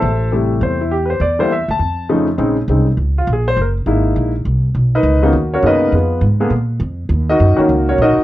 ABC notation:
X:1
M:4/4
L:1/8
Q:"Swing" 1/4=204
K:F
V:1 name="Grand piano"
[Acea]2 z2 c E G [=Bc] | d c e a3 z2 | [K:Bbm] z4 z F A c | B z6 z |
z [^D^A=B^d]2 [^FA]2 [^CFA^c] [DABd]2 | [_CFA_c]2 z6 | z [EGBe]2 [B,EGB]2 [DGBd] [EGBe]2 |]
V:2 name="Grand piano"
z2 [C,G,A,E]3 z3 | z [D,G,B,E] z4 [_D,F,A,_E] z | [K:Bbm] [D,A,CE] z [D,A,CE] z4 z | z2 [A,B,E_F]3 z3 |
z3 [^C,^A,=B,^D] z2 [C,A,B,D]2 | z3 [=D,B,_CA] z4 | z3 [E,B,DG] z4 |]
V:3 name="Upright bass" clef=bass
A,,,4 E,,4 | E,,3 D,, F,,4 | [K:Bbm] B,,,2 C,,2 D,,2 B,,,2 | G,,,2 A,,,2 B,,,2 C,,2 |
=B,,,2 ^C,,2 ^D,,2 ^F,,2 | F,,2 A,,2 B,,2 F,,2 | E,,2 G,, z D,,2 B,,, z |]